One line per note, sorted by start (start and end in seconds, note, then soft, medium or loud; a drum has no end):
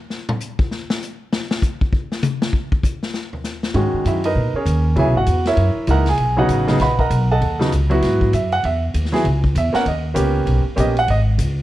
0.10 snare soft
0.29 mid tom loud
0.40 hi-hat pedal medium
0.59 kick medium
0.71 snare soft
0.90 snare loud
1.02 hi-hat pedal medium
1.33 snare loud
1.51 snare loud
1.62 kick medium
1.62 hi-hat pedal medium
1.81 kick medium
1.93 kick medium
2.12 snare medium
2.23 hi-hat pedal medium
2.23 high tom loud
2.42 snare loud
2.53 kick medium
2.72 kick medium
2.83 kick medium
2.83 hi-hat pedal medium
3.03 snare medium
3.14 snare soft
3.33 floor tom soft
3.44 snare soft
3.44 hi-hat pedal medium
3.63 snare medium
3.74 3.92 G#2 medium
3.74 4.20 D#3 medium
3.74 4.20 G#3 medium
3.74 4.21 C#4 medium
3.74 4.21 F#4 medium
3.74 kick soft
3.74 ride medium
3.93 muted upright bass stroke soft
4.05 4.35 F#2 medium
4.05 4.25 E4 medium
4.05 4.25 E5 medium
4.05 kick soft
4.05 hi-hat pedal medium
4.05 ride medium
4.24 4.53 D#4 medium
4.24 4.53 A#4 medium
4.24 4.53 B4 medium
4.24 4.53 D#5 medium
4.24 ride medium
4.35 4.53 A#2 medium
4.35 kick soft
4.53 4.94 C#4 medium
4.53 4.94 G#4 medium
4.53 4.94 A#4 medium
4.53 4.94 C#5 medium
4.53 muted upright bass stroke soft
4.66 4.95 D#2 loud
4.66 kick soft
4.66 hi-hat pedal medium
4.66 ride medium
4.96 5.06 C#2 medium
4.96 5.13 C#3 medium
4.96 5.13 F#3 medium
4.96 5.14 B3 medium
4.96 5.14 E4 medium
4.96 5.16 G#4 medium
4.96 5.17 C#5 medium
4.96 5.17 E5 medium
4.96 5.16 G#5 medium
4.96 kick soft
4.96 ride medium
5.06 5.14 B1 medium
5.15 5.25 G#1 medium
5.15 5.45 F#4 medium
5.15 5.45 F#5 medium
5.26 5.56 E2 medium
5.26 kick soft
5.26 hi-hat pedal medium
5.26 ride medium
5.45 5.86 E4 medium
5.45 5.86 A#4 medium
5.45 5.86 C#5 medium
5.45 5.86 E5 medium
5.45 snare medium
5.45 ride soft
5.57 5.75 F#2 medium
5.57 kick soft
5.57 ride medium
5.76 muted upright bass stroke soft
5.87 6.17 C#2 medium
5.87 6.05 E3 medium
5.87 6.05 G#3 medium
5.87 6.05 A#3 medium
5.87 6.06 D#4 medium
5.87 6.08 A#4 medium
5.87 6.08 E5 medium
5.87 6.08 F#5 medium
5.87 6.08 A#5 medium
5.87 kick soft
5.87 hi-hat pedal medium
5.87 ride medium
6.06 6.37 G#4 medium
6.06 6.37 G#5 medium
6.06 snare soft
6.06 ride medium
6.17 6.48 B1 medium
6.17 kick soft
6.17 ride medium
6.37 6.66 C#3 medium
6.37 6.66 F#3 medium
6.37 6.66 B3 medium
6.37 6.67 D#4 medium
6.37 6.78 F#4 medium
6.37 6.78 C#5 medium
6.37 6.78 D#5 medium
6.37 6.77 F#5 medium
6.49 6.79 A1 medium
6.49 kick soft
6.49 hi-hat pedal medium
6.49 ride medium
6.68 6.78 C#3 medium
6.68 6.78 F#3 medium
6.68 6.79 B3 medium
6.68 6.79 D#4 medium
6.68 snare soft
6.68 ride soft
6.79 7.09 A#1 medium
6.79 6.99 B4 medium
6.79 6.98 D#5 medium
6.79 6.99 F#5 medium
6.79 6.99 B5 medium
6.79 kick soft
6.79 snare soft
6.79 ride medium
6.99 7.28 A#4 medium
6.99 7.28 D#5 medium
6.99 7.28 F#5 medium
6.99 7.28 A#5 medium
6.99 kick medium
7.10 7.40 B1 loud
7.10 kick soft
7.10 hi-hat pedal medium
7.10 ride medium
7.31 7.70 A4 medium
7.31 7.70 D#5 medium
7.31 7.70 F#5 medium
7.31 7.70 A5 medium
7.41 7.71 D#2 medium
7.41 kick soft
7.41 ride medium
7.59 7.70 C#3 medium
7.59 7.70 F#3 medium
7.59 7.71 B3 medium
7.59 7.71 D#4 medium
7.59 snare medium
7.72 8.01 C#2 medium
7.72 kick soft
7.72 hi-hat pedal medium
7.72 ride medium
7.90 8.30 F#3 medium
7.90 8.30 B3 medium
7.90 8.31 E4 medium
7.90 8.31 F#4 medium
7.90 ride soft
8.02 8.32 G#2 medium
8.02 kick soft
8.02 snare soft
8.02 ride medium
8.21 kick medium
8.33 8.62 F#2 medium
8.33 8.52 E5 medium
8.33 kick soft
8.33 hi-hat pedal medium
8.33 ride medium
8.52 8.63 F#5 loud
8.52 ride medium
8.63 8.93 E2 medium
8.63 8.83 E5 medium
8.63 kick soft
8.63 ride medium
8.94 9.23 D#2 medium
8.94 kick soft
8.94 hi-hat pedal medium
8.94 ride medium
9.05 snare soft
9.12 9.23 F#3 medium
9.12 9.23 B3 medium
9.12 9.23 E4 medium
9.12 9.23 G#4 medium
9.12 snare soft
9.12 ride soft
9.24 9.54 C#2 medium
9.24 kick soft
9.24 ride medium
9.44 kick medium
9.55 9.73 E2 loud
9.55 9.75 E5 medium
9.55 kick soft
9.55 hi-hat pedal medium
9.55 ride medium
9.73 9.84 A#3 medium
9.73 9.84 B3 medium
9.73 9.84 C#4 medium
9.73 9.84 A#4 medium
9.73 9.86 F#5 loud
9.73 muted upright bass stroke soft
9.73 snare soft
9.73 ride medium
9.86 10.15 D#2 medium
9.86 10.05 D#5 medium
9.86 kick soft
9.86 ride medium
10.14 10.45 C#2 medium
10.14 10.61 A#3 medium
10.14 10.61 B3 medium
10.14 10.61 C#4 medium
10.14 10.61 G4 medium
10.14 kick soft
10.14 hi-hat pedal medium
10.14 ride medium
10.46 10.64 B1 medium
10.46 kick soft
10.46 ride medium
10.65 muted upright bass stroke soft
10.76 11.06 A#1 loud
10.76 10.93 A#3 medium
10.76 10.94 B3 medium
10.76 10.94 C#4 medium
10.76 10.94 G4 medium
10.76 kick soft
10.76 hi-hat pedal medium
10.76 ride medium
10.80 10.97 D#5 medium
10.97 11.08 F#5 loud
10.97 ride medium
11.08 11.37 G#1 medium
11.08 11.21 D#5 loud
11.08 kick soft
11.08 ride medium
11.38 11.62 C#2 medium
11.38 kick soft
11.38 hi-hat pedal medium
11.38 ride medium